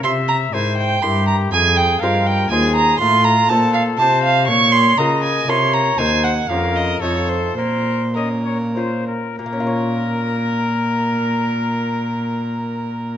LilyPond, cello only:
\new Staff \with { instrumentName = "Cello" } { \clef bass \time 3/4 \key f \minor \tempo 4 = 120 c4 aes,4 g,4 | f,4 g,4 ees,4 | \key bes \minor a,4 bes,4 c4 | bes,4 des4 c4 |
ees,4 f,4 f,4 | bes,2~ bes,8 r8 | bes,2.~ | bes,2. | }